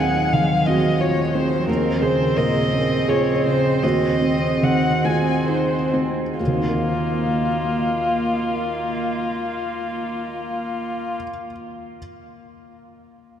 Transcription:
Already playing: felt piano D#2 G#4, cello F#3, analog synth pad D#4 G#4 D#5
0.00 felt piano C4, violin F#5
0.33 felt piano D#3, cello F3, violin F5
0.66 felt piano C4 F#4, violin D#5
1.00 felt piano F4, violin C#5
1.35 felt piano C4, violin C5
1.68 felt piano D#2, analog synth pad C#3, cello C4, violin A#4
2.02 felt piano C#3 G#4, violin C5
2.37 felt piano A#2 A#4, violin D#5
2.73 felt piano C#3
3.08 felt piano F4 G#4, violin C#5
3.46 felt piano C#3, violin C5
3.82 felt piano D#2 F#4, analog synth pad C4 G#4 D#5, violin D#5
4.22 felt piano C4
4.63 felt piano D#3, violin F#5
5.04 felt piano C4 F4, violin G#5
5.47 felt piano D#4 G#4, violin C5
5.93 felt piano C4
6.39 felt piano D#2 F#4, analog synth pad A#3 D#5 F5, cello A#3, violin F4
6.47 felt piano D#3
6.54 felt piano D#4
6.68 felt piano A#4
6.75 felt piano F5

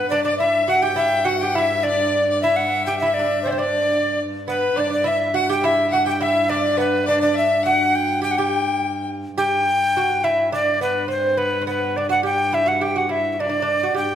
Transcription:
Already playing: viola da gamba G2, lute B3, fiddle B4
0.10 viola da gamba G2, lute D4, recorder D5, fiddle D5
0.24 lute D4, recorder D5, fiddle D5
0.39 lute E4, recorder E5, fiddle E5
0.68 lute F#4, recorder F#5, fiddle F#5
0.82 lute G4, recorder G5, fiddle G5
0.96 lute E4, recorder E5
1.25 lute F#4, recorder F#5, fiddle F#5
1.39 lute G4, recorder G5
1.55 lute E4, recorder E5, fiddle E5
1.83 lute D4, recorder D5
1.88 fiddle D5
2.30 fiddle D5
2.42 lute E4, recorder E5, fiddle E5
2.56 recorder F#5
2.86 lute G4, recorder G5
2.99 lute E4, recorder E5
3.05 fiddle E5
3.14 recorder D5
3.19 lute D4
3.43 lute C4, recorder C5, fiddle C5
3.48 recorder C5 D5
3.52 lute C4
3.58 lute D4, recorder D5, fiddle D5
4.48 lute B3, fiddle B4, recorder B4
4.76 viola da gamba G2, lute D4, fiddle D5, recorder D5
4.90 lute D4, recorder D5
5.04 lute E4, fiddle E5, recorder E5
5.34 lute F#4, fiddle F#5, recorder F#5
5.49 lute G4, fiddle G5, recorder G5
5.62 lute E4, fiddle E5, recorder E5
5.90 lute F#4, fiddle F#5, recorder F#5
6.06 lute G4, fiddle G5, recorder G5
6.21 lute E4, fiddle E5, recorder E5
6.49 lute D4, fiddle D5, recorder D5
6.77 lute B3, fiddle B4, recorder B4
7.05 lute D4, fiddle D5, recorder D5
7.20 lute D4, fiddle D5, recorder D5
7.34 fiddle E5, recorder E5
7.63 lute F#4, fiddle F#5, recorder F#5
7.95 recorder G5
8.22 lute G4, fiddle G5, recorder G5
8.31 recorder F#5
8.37 lute G4, fiddle G5, recorder G5
9.38 viola da gamba G2, lute G4, recorder G5
9.97 lute F#4
10.24 lute E4, recorder E5
10.52 lute D4, recorder D5
10.81 lute B3, recorder B4
11.08 lute C4, recorder C5
11.37 lute B3, recorder B4
11.61 lute C4
11.67 lute B3, recorder B4
11.96 lute D4, recorder D5
12.09 lute F#4, recorder F#5
12.23 lute G4, recorder G5
12.53 lute E4, recorder E5
12.66 lute F#4, recorder F#5
12.81 lute G4, recorder G5
12.96 lute F#4, recorder F#5
13.09 lute E4, recorder E5
13.33 recorder E5
13.40 lute D4, recorder D5
13.49 lute D4
13.62 lute D4
13.83 lute F#4
13.95 lute G4, recorder G5
13.99 viola da gamba G2

